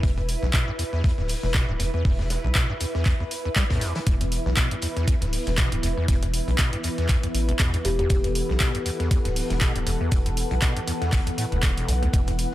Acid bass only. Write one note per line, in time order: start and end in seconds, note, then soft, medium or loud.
0.03 0.11 E2 medium
0.18 0.21 E2 medium
0.43 0.46 E1 medium
0.54 0.65 B2 medium
0.68 0.72 G2 medium
0.79 0.84 E2 medium
0.93 1.02 E2 loud
1.04 1.12 E2 medium
1.18 1.22 E2 medium
1.43 1.47 E1 medium
1.54 1.66 B2 medium
1.69 1.72 G2 medium
1.80 1.84 E2 medium
1.94 2.03 E2 loud
2.05 2.13 E2 medium
2.19 2.23 E2 loud
2.44 2.48 E1 loud
2.56 2.67 B2 medium
2.70 2.73 G2 medium
2.81 2.85 E2 medium
2.95 3.04 E2 loud
3.06 3.14 E2 medium
3.20 3.24 E2 loud
3.45 3.49 E2 medium
3.56 3.64 G3 medium
3.71 3.83 A2 medium
3.82 3.93 E2 loud
3.96 3.99 E3 loud
4.07 4.15 E2 medium
4.21 4.25 E2 loud
4.46 4.50 E1 loud
4.57 4.69 B2 medium
4.71 4.75 G2 medium
4.82 4.87 E2 medium
4.97 5.06 E2 loud
5.08 5.15 E2 medium
5.22 5.25 E2 medium
5.47 5.51 E1 loud
5.58 5.70 B2 medium
5.72 5.76 G2 medium
5.83 5.88 E2 medium
5.97 6.07 E2 loud
6.08 6.16 E2 medium
6.23 6.26 E2 loud
6.48 6.52 E1 medium
6.59 6.71 B2 medium
6.73 6.77 G2 medium
6.84 6.89 E2 medium
6.98 7.07 E2 loud
7.09 7.17 E2 medium
7.24 7.27 E2 medium
7.49 7.52 E1 loud
7.60 7.71 B2 medium
7.74 7.78 G2 medium
7.85 7.90 E2 medium
7.99 8.08 E2 loud
8.10 8.18 E2 medium
8.24 8.28 E2 loud
8.49 8.53 E1 loud
8.61 8.72 B2 medium
8.75 8.78 G2 medium
8.86 8.90 E2 medium
9.00 9.09 E2 loud
9.11 9.19 E2 medium
9.25 9.29 E2 medium
9.50 9.54 E1 loud
9.61 9.73 B2 medium
9.76 9.79 G2 medium
9.87 9.91 E2 medium
10.01 10.10 E2 loud
10.12 10.20 E2 medium
10.26 10.30 E2 loud
10.51 10.55 E1 loud
10.62 10.74 B2 medium
10.77 10.80 G2 medium
10.88 10.92 E2 medium
11.02 11.11 E2 loud
11.13 11.20 E2 medium
11.27 11.30 E2 medium
11.38 11.46 A2 loud
11.52 11.58 D2 loud
11.63 11.71 E1 medium
11.77 11.90 E1 loud
11.88 11.93 E3 loud
12.02 12.09 D2 loud
12.13 12.21 E2 medium
12.28 12.31 E2 loud